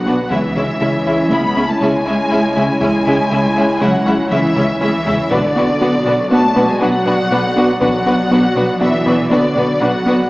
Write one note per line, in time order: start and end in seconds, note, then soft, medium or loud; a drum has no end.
0.00 0.25 B1 medium
0.00 0.31 F#3 medium
0.00 0.27 B3 medium
0.00 0.27 D4 medium
0.00 0.27 F#4 medium
0.00 0.28 B4 medium
0.00 0.30 F#5 medium
0.06 0.21 B3 medium
0.06 0.14 B3 soft
0.06 0.14 D4 soft
0.06 0.21 F#4 medium
0.06 0.14 F#4 soft
0.06 0.14 B4 soft
0.31 0.75 C#2 medium
0.31 0.46 C#2 medium
0.31 0.46 C#3 medium
0.31 1.29 E3 medium
0.31 5.31 G#3 medium
0.31 0.39 G#3 soft
0.31 5.31 C#4 medium
0.31 0.39 C#4 soft
0.31 0.39 E4 soft
0.31 5.31 E4 medium
0.31 5.31 C#5 medium
0.31 0.39 E5 soft
0.31 1.31 E5 medium
0.31 taiko medium
0.56 0.71 C#3 medium
0.56 0.64 G#3 soft
0.56 0.72 G#3 soft
0.56 0.64 C#4 soft
0.56 0.64 E4 soft
0.56 0.64 E5 soft
0.80 1.25 C#2 medium
0.80 0.96 C#3 medium
0.80 0.89 G#3 soft
0.80 0.96 G#3 medium
0.80 0.89 C#4 soft
0.80 0.89 E4 soft
0.80 0.88 E5 soft
1.06 1.21 C#2 medium
1.06 1.14 G#3 soft
1.06 1.14 C#4 soft
1.06 1.15 E4 soft
1.06 1.14 E5 soft
1.31 1.75 C#2 medium
1.31 1.46 C#3 medium
1.31 1.46 G#3 medium
1.31 1.39 G#3 soft
1.31 1.69 B3 medium
1.31 1.40 C#4 soft
1.31 1.39 E4 soft
1.31 1.40 E5 soft
1.31 1.69 B5 medium
1.56 1.71 C#2 medium
1.56 1.71 C#3 medium
1.56 1.65 G#3 soft
1.56 1.65 C#4 soft
1.56 1.65 E4 soft
1.56 1.65 E5 soft
1.69 1.81 A3 soft
1.69 1.82 A5 medium
1.81 2.25 C#2 medium
1.81 1.96 C#3 soft
1.81 2.80 G#3 medium
1.81 1.90 G#3 soft
1.81 1.90 C#4 soft
1.81 1.90 E4 soft
1.81 1.90 E5 soft
1.81 2.80 G#5 medium
2.06 2.21 C#2 medium
2.06 2.15 G#3 soft
2.06 2.15 C#4 soft
2.06 2.14 E4 soft
2.06 2.14 E5 soft
2.30 2.75 C#2 medium
2.30 2.46 C#2 medium
2.30 2.40 G#3 soft
2.30 2.46 C#4 medium
2.30 2.40 C#4 soft
2.30 2.38 E4 soft
2.30 2.38 E5 soft
2.56 2.72 C#3 medium
2.56 2.71 G#3 medium
2.56 2.64 G#3 soft
2.56 2.64 C#4 soft
2.56 2.64 E4 soft
2.56 2.64 E5 soft
2.81 3.25 C#2 medium
2.81 2.97 C#2 medium
2.81 2.96 C#3 medium
2.81 3.79 G#3 medium
2.81 2.90 G#3 soft
2.81 2.90 C#4 soft
2.81 2.89 E4 soft
2.81 2.89 E5 medium
2.81 3.79 G#5 medium
2.81 taiko medium
3.06 3.21 C#3 medium
3.06 3.21 G#3 medium
3.06 3.15 G#3 soft
3.06 3.16 C#4 soft
3.06 3.14 E4 soft
3.06 3.14 E5 soft
3.30 3.75 C#2 medium
3.30 3.47 C#3 medium
3.30 3.46 G#3 medium
3.30 3.41 G#3 soft
3.30 3.41 C#4 soft
3.30 3.39 E4 soft
3.30 3.39 E5 soft
3.56 3.72 C#2 medium
3.56 3.65 G#3 soft
3.56 3.65 C#4 soft
3.56 3.65 E4 soft
3.56 3.64 E5 soft
3.81 4.25 C#2 medium
3.81 3.96 C#3 medium
3.81 4.31 F#3 medium
3.81 3.89 G#3 soft
3.81 3.96 G#3 medium
3.81 3.89 C#4 soft
3.81 3.89 E4 soft
3.81 3.89 E5 soft
3.81 4.31 F#5 medium
4.06 4.21 C#2 medium
4.06 4.21 C#3 medium
4.06 4.15 G#3 soft
4.06 4.15 C#4 soft
4.06 4.14 E4 soft
4.06 4.14 E5 soft
4.31 4.76 C#2 medium
4.31 4.46 C#3 medium
4.31 4.80 E3 medium
4.31 4.40 G#3 medium
4.31 4.40 C#4 medium
4.31 4.39 E4 medium
4.31 4.80 E5 medium
4.31 4.39 E5 medium
4.56 4.71 C#2 medium
4.56 4.65 G#3 soft
4.56 4.65 C#4 soft
4.56 4.64 E4 soft
4.56 4.64 E5 soft
4.56 taiko mid medium
4.81 4.96 C#2 medium
4.81 5.25 C#2 medium
4.81 5.30 E3 medium
4.81 4.90 G#3 soft
4.81 4.96 C#4 medium
4.81 4.90 C#4 medium
4.81 4.89 E4 soft
4.81 5.30 E5 medium
4.81 4.89 E5 medium
4.81 taiko high medium
5.06 5.21 C#3 medium
5.06 5.14 G#3 soft
5.06 5.21 G#3 medium
5.06 5.14 C#4 soft
5.06 5.14 E4 soft
5.06 5.14 E5 medium
5.06 taiko low medium
5.31 5.76 B1 medium
5.31 5.46 B2 medium
5.31 6.29 D3 medium
5.31 10.30 F#3 medium
5.31 5.46 B3 medium
5.31 10.30 B3 medium
5.31 5.40 B3 medium
5.31 5.40 D4 medium
5.31 5.39 F#4 medium
5.31 10.30 F#4 medium
5.31 5.39 B4 medium
5.31 10.30 D5 medium
5.31 6.31 D5 medium
5.31 taiko medium
5.56 5.71 B3 medium
5.56 5.65 B3 soft
5.56 5.65 D4 medium
5.56 5.71 F#4 medium
5.56 5.65 F#4 soft
5.56 5.65 B4 medium
5.81 6.25 B1 medium
5.81 5.96 B3 medium
5.81 5.90 B3 medium
5.81 5.90 D4 soft
5.81 5.96 F#4 medium
5.81 5.90 F#4 medium
5.81 5.90 B4 medium
6.06 6.21 B2 medium
6.06 6.14 B3 soft
6.06 6.14 D4 medium
6.06 6.14 F#4 soft
6.06 6.14 B4 medium
6.31 6.75 B1 medium
6.31 6.68 A3 medium
6.31 6.39 B3 medium
6.31 6.46 B3 medium
6.31 6.39 D4 medium
6.31 6.46 F#4 medium
6.31 6.39 F#4 medium
6.31 6.40 B4 soft
6.31 6.68 A5 medium
6.55 6.71 B2 medium
6.55 6.63 B3 medium
6.55 6.71 B3 medium
6.55 6.63 D4 soft
6.55 6.64 F#4 medium
6.55 6.65 B4 soft
6.68 6.81 G#3 medium
6.68 6.82 G#5 medium
6.80 7.25 B1 medium
6.80 7.79 F#3 medium
6.80 6.89 B3 medium
6.80 6.96 B3 medium
6.80 6.88 D4 medium
6.80 6.89 F#4 medium
6.80 6.89 B4 medium
6.80 7.80 F#5 medium
7.06 7.21 B2 medium
7.06 7.14 B3 soft
7.06 7.14 D4 medium
7.06 7.14 F#4 medium
7.06 7.14 B4 soft
7.31 7.75 B1 medium
7.31 7.46 B2 medium
7.31 7.39 B3 medium
7.31 7.39 D4 medium
7.31 7.39 F#4 soft
7.31 7.46 B4 medium
7.31 7.39 B4 soft
7.56 7.64 B3 medium
7.56 7.71 B3 medium
7.56 7.64 D4 soft
7.56 7.71 F#4 medium
7.56 7.65 F#4 medium
7.56 7.65 B4 medium
7.80 8.25 B1 medium
7.80 7.96 B2 medium
7.80 8.79 F#3 medium
7.80 7.89 B3 medium
7.80 7.96 B3 medium
7.80 7.88 D4 medium
7.80 7.90 F#4 medium
7.80 7.90 B4 medium
7.80 8.79 F#5 medium
7.80 taiko medium
8.06 8.21 B3 medium
8.06 8.14 B3 medium
8.06 8.15 D4 soft
8.06 8.15 F#4 soft
8.06 8.22 F#4 medium
8.06 8.14 B4 medium
8.31 8.75 B1 medium
8.31 8.39 B3 medium
8.31 8.46 B3 medium
8.31 8.39 D4 soft
8.31 8.46 F#4 medium
8.31 8.40 F#4 medium
8.31 8.40 B4 soft
8.55 8.71 B2 medium
8.55 8.63 B3 soft
8.55 8.63 D4 soft
8.55 8.64 F#4 medium
8.55 8.64 B4 soft
8.80 9.25 B1 medium
8.80 9.30 E3 medium
8.80 8.89 B3 medium
8.80 8.96 B3 medium
8.80 8.88 D4 medium
8.80 8.96 F#4 medium
8.80 8.89 F#4 soft
8.80 8.89 B4 soft
8.80 9.31 E5 medium
9.06 9.21 B2 medium
9.06 9.21 B3 medium
9.06 9.14 B3 soft
9.06 9.14 D4 soft
9.06 9.15 F#4 soft
9.06 9.15 B4 medium
9.31 9.75 B1 medium
9.31 9.81 D3 medium
9.31 9.39 B3 medium
9.31 9.46 B3 medium
9.31 9.39 D4 medium
9.31 9.39 F#4 medium
9.31 9.39 B4 medium
9.31 9.80 D5 medium
9.56 9.71 B2 medium
9.56 9.64 B3 soft
9.56 9.64 D4 soft
9.56 9.65 F#4 soft
9.56 9.65 B4 soft
9.81 10.25 B1 medium
9.81 9.96 B2 medium
9.81 10.30 F#3 medium
9.81 9.89 B3 medium
9.81 9.89 D4 medium
9.81 9.90 F#4 soft
9.81 9.96 B4 medium
9.81 9.90 B4 medium
9.81 10.30 F#5 medium
10.06 10.21 B3 medium
10.06 10.14 B3 soft
10.06 10.14 D4 soft
10.06 10.21 F#4 medium
10.06 10.15 F#4 medium
10.06 10.15 B4 medium